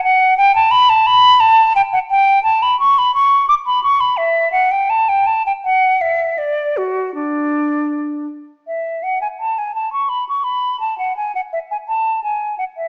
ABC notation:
X:1
M:3/4
L:1/16
Q:1/4=84
K:D
V:1 name="Flute"
f2 g a b a b2 a2 g f | g2 a b c' b c'2 d' b c' b | e2 f g a g a g f2 e2 | d2 F2 D6 z2 |
[K:A] e2 f g a g a c' b c' b2 | a f g f e g a2 g2 f e |]